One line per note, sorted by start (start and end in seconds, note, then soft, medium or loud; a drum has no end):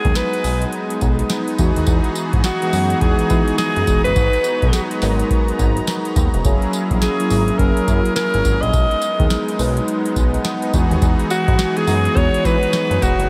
0.00 1.57 G#3 medium
0.00 4.12 B3 medium
0.00 6.40 D#4 medium
0.00 0.18 G#4 loud
0.05 0.13 D#2 loud
0.05 0.41 F#3 medium
0.05 0.41 G#3 medium
0.05 0.42 B3 medium
0.05 0.42 D#4 medium
0.05 0.42 G#4 medium
0.05 kick loud
0.05 closed hi-hat soft
0.15 0.73 B4 medium
0.15 snare loud
0.15 closed hi-hat medium
0.15 tambourine loud
0.33 closed hi-hat medium
0.44 0.65 B1 loud
0.44 1.50 F#3 medium
0.44 1.51 G#3 medium
0.44 1.51 B3 medium
0.44 1.51 D#4 medium
0.44 1.51 G#4 medium
0.44 open hi-hat medium
0.44 tambourine medium
0.62 closed hi-hat medium
0.72 closed hi-hat medium
0.90 closed hi-hat medium
1.01 1.22 B1 medium
1.01 kick medium
1.01 closed hi-hat medium
1.01 tambourine medium
1.19 closed hi-hat medium
1.30 snare loud
1.30 closed hi-hat medium
1.30 tambourine medium
1.48 closed hi-hat soft
1.58 1.71 E2 loud
1.58 2.50 E3 medium
1.58 4.13 E3 medium
1.58 2.51 G#3 medium
1.58 2.51 B3 medium
1.58 2.51 D#4 medium
1.58 6.41 F#4 medium
1.58 2.51 F#4 loud
1.58 4.13 G#4 medium
1.58 kick medium
1.58 closed hi-hat medium
1.58 tambourine medium
1.76 1.85 D#2 medium
1.76 closed hi-hat medium
1.87 2.00 E2 loud
1.87 kick loud
1.87 closed hi-hat medium
1.87 tambourine medium
2.04 closed hi-hat soft
2.15 closed hi-hat medium
2.15 tambourine medium
2.33 2.41 G#2 medium
2.33 kick loud
2.33 closed hi-hat medium
2.44 3.03 F#4 medium
2.44 snare loud
2.44 closed hi-hat medium
2.44 tambourine medium
2.62 2.72 E3 medium
2.62 2.72 G#3 medium
2.62 2.72 B3 medium
2.62 2.72 D#4 medium
2.62 2.73 F#4 loud
2.62 closed hi-hat medium
2.73 2.94 F#2 medium
2.73 3.00 E3 medium
2.73 3.00 G#3 medium
2.73 3.00 B3 medium
2.73 3.00 D#4 medium
2.73 3.00 F#4 medium
2.73 open hi-hat medium
2.73 tambourine medium
2.90 closed hi-hat medium
3.01 3.14 E2 medium
3.01 3.28 E3 medium
3.01 3.28 G#3 medium
3.01 3.28 B3 medium
3.01 3.28 D#4 medium
3.01 3.29 F#4 loud
3.01 3.57 G#4 medium
3.01 kick loud
3.01 closed hi-hat medium
3.19 closed hi-hat medium
3.30 4.16 E3 medium
3.30 3.43 E3 loud
3.30 4.16 G#3 medium
3.30 4.16 B3 medium
3.30 4.16 D#4 medium
3.30 4.17 F#4 medium
3.30 kick medium
3.30 closed hi-hat medium
3.30 tambourine medium
3.48 closed hi-hat medium
3.58 4.01 G#4 loud
3.58 snare loud
3.58 closed hi-hat medium
3.58 tambourine medium
3.76 3.84 F#2 medium
3.76 closed hi-hat medium
3.87 4.00 E1 loud
3.87 kick medium
3.87 closed hi-hat medium
3.87 tambourine medium
4.04 4.13 F#1 medium
4.04 4.86 B4 loud
4.04 closed hi-hat medium
4.16 4.29 G#1 loud
4.16 6.42 G#3 medium
4.16 6.42 B3 medium
4.16 8.69 A#5 medium
4.16 kick loud
4.16 closed hi-hat medium
4.16 tambourine medium
4.33 closed hi-hat soft
4.44 closed hi-hat medium
4.44 tambourine medium
4.62 4.70 B1 loud
4.62 4.99 F#3 medium
4.62 4.99 G#3 medium
4.62 4.99 B3 medium
4.62 4.99 D#4 medium
4.62 4.99 G#4 medium
4.62 kick loud
4.62 closed hi-hat soft
4.73 snare loud
4.73 closed hi-hat medium
4.73 tambourine loud
4.91 closed hi-hat medium
5.02 5.22 G#1 medium
5.02 6.08 F#3 medium
5.02 6.08 G#3 medium
5.02 6.08 B3 medium
5.02 6.08 D#4 medium
5.02 6.08 A#4 loud
5.02 snare medium
5.02 open hi-hat medium
5.02 tambourine medium
5.19 closed hi-hat medium
5.30 kick loud
5.30 closed hi-hat medium
5.48 closed hi-hat medium
5.59 5.79 G#1 loud
5.59 kick medium
5.59 closed hi-hat medium
5.59 tambourine medium
5.77 closed hi-hat medium
5.87 snare loud
5.87 closed hi-hat medium
5.87 tambourine medium
6.05 closed hi-hat medium
6.16 6.29 D#2 loud
6.16 kick medium
6.16 closed hi-hat medium
6.16 tambourine medium
6.34 6.42 E1 loud
6.34 closed hi-hat medium
6.44 6.57 F#1 loud
6.44 8.71 F#3 medium
6.44 7.11 F#3 loud
6.44 7.11 A#3 medium
6.44 8.71 C#4 medium
6.44 7.12 C#4 medium
6.44 8.71 E4 medium
6.44 7.12 E4 medium
6.44 8.71 G#4 medium
6.44 7.12 G#4 loud
6.44 kick loud
6.44 closed hi-hat medium
6.44 tambourine medium
6.62 closed hi-hat soft
6.73 closed hi-hat medium
6.73 tambourine medium
6.91 6.98 A#1 loud
6.91 kick loud
6.91 closed hi-hat soft
7.02 7.60 G#4 medium
7.02 snare loud
7.02 closed hi-hat medium
7.02 tambourine loud
7.20 7.29 F#3 medium
7.20 7.29 A#3 medium
7.20 7.30 C#4 medium
7.20 7.30 E4 medium
7.20 7.30 G#4 loud
7.20 closed hi-hat medium
7.30 7.51 G#1 medium
7.30 7.57 F#3 medium
7.30 7.57 A#3 medium
7.30 7.57 C#4 medium
7.30 7.57 E4 medium
7.30 7.57 G#4 medium
7.30 open hi-hat medium
7.30 tambourine medium
7.48 closed hi-hat medium
7.58 7.72 F#1 loud
7.58 7.85 F#3 medium
7.58 7.86 A#3 medium
7.58 7.86 C#4 medium
7.58 7.86 E4 medium
7.58 7.86 G#4 medium
7.58 8.15 A#4 medium
7.58 kick loud
7.58 closed hi-hat medium
7.77 closed hi-hat medium
7.88 8.00 F#2 loud
7.88 8.73 F#3 medium
7.88 8.73 A#3 medium
7.88 8.73 C#4 medium
7.88 8.74 E4 medium
7.88 8.74 F#4 medium
7.88 kick medium
7.88 closed hi-hat medium
7.88 tambourine medium
8.05 closed hi-hat medium
8.16 8.63 A#4 loud
8.16 snare loud
8.16 closed hi-hat medium
8.16 tambourine medium
8.34 8.42 G#1 medium
8.34 closed hi-hat medium
8.45 8.57 G#1 loud
8.45 kick medium
8.45 closed hi-hat medium
8.45 tambourine medium
8.62 8.70 A#1 medium
8.62 9.48 D#5 loud
8.62 closed hi-hat medium
8.72 8.86 B1 loud
8.72 10.71 G#3 medium
8.72 13.26 B3 medium
8.72 13.29 D#4 medium
8.72 kick loud
8.72 closed hi-hat medium
8.72 tambourine medium
8.91 closed hi-hat soft
9.02 closed hi-hat medium
9.02 tambourine medium
9.19 9.27 D#2 loud
9.19 9.56 F#3 medium
9.19 9.56 G#3 medium
9.19 9.56 B3 medium
9.19 9.56 D#4 medium
9.19 9.56 G#4 medium
9.19 kick loud
9.19 closed hi-hat medium
9.30 snare loud
9.30 closed hi-hat medium
9.30 tambourine medium
9.48 closed hi-hat medium
9.59 9.79 B1 loud
9.59 10.65 F#3 loud
9.59 10.65 G#3 medium
9.59 10.65 B3 medium
9.59 10.65 D#4 medium
9.59 10.17 B4 loud
9.59 open hi-hat medium
9.59 tambourine medium
9.77 closed hi-hat medium
9.88 closed hi-hat medium
10.05 closed hi-hat medium
10.16 10.37 B1 medium
10.16 10.33 G#5 medium
10.16 kick medium
10.16 closed hi-hat medium
10.16 tambourine medium
10.34 10.45 F#5 medium
10.34 closed hi-hat medium
10.44 10.62 D#5 medium
10.44 snare loud
10.44 closed hi-hat medium
10.44 tambourine medium
10.62 10.90 B4 medium
10.62 closed hi-hat medium
10.73 10.86 E2 loud
10.73 13.28 E3 medium
10.73 11.65 E3 medium
10.73 11.65 G#3 medium
10.73 11.65 B3 medium
10.73 11.65 D#4 medium
10.73 13.29 F#4 medium
10.73 11.66 F#4 loud
10.73 13.27 G#4 loud
10.73 kick medium
10.73 closed hi-hat medium
10.73 tambourine medium
10.91 10.99 D#2 medium
10.91 closed hi-hat medium
11.02 11.14 E2 medium
11.02 kick loud
11.02 closed hi-hat medium
11.02 tambourine medium
11.19 closed hi-hat soft
11.30 11.78 F#4 loud
11.30 closed hi-hat medium
11.30 tambourine medium
11.48 11.56 G#2 medium
11.48 kick loud
11.48 closed hi-hat medium
11.59 snare loud
11.59 closed hi-hat medium
11.59 tambourine medium
11.77 11.86 E3 medium
11.77 11.87 G#3 medium
11.77 11.87 B3 medium
11.77 11.87 D#4 medium
11.77 11.87 F#4 medium
11.77 12.18 G#4 loud
11.77 closed hi-hat medium
11.87 12.08 F#2 loud
11.87 12.14 E3 medium
11.87 12.14 G#3 medium
11.87 12.14 B3 medium
11.87 12.14 D#4 medium
11.87 12.15 F#4 medium
11.87 open hi-hat medium
11.87 tambourine medium
12.05 closed hi-hat soft
12.16 12.29 E2 medium
12.16 12.42 E3 medium
12.16 12.43 G#3 medium
12.16 12.43 B3 medium
12.16 12.43 D#4 medium
12.16 12.43 F#4 medium
12.16 12.47 C#5 loud
12.16 kick loud
12.16 closed hi-hat medium
12.34 closed hi-hat medium
12.45 12.57 E3 loud
12.45 13.29 E3 medium
12.45 13.29 G#3 medium
12.45 13.29 B3 medium
12.45 13.29 D#4 medium
12.45 13.29 F#4 medium
12.45 13.04 B4 loud
12.45 kick medium
12.45 closed hi-hat medium
12.45 tambourine medium
12.63 closed hi-hat medium
12.73 snare loud
12.73 closed hi-hat medium
12.73 tambourine medium
12.90 12.98 F#2 medium
12.90 closed hi-hat medium
13.02 13.15 E1 loud
13.02 13.29 F#4 medium
13.02 kick medium
13.02 closed hi-hat medium
13.02 tambourine medium
13.19 13.27 F#1 loud
13.19 closed hi-hat medium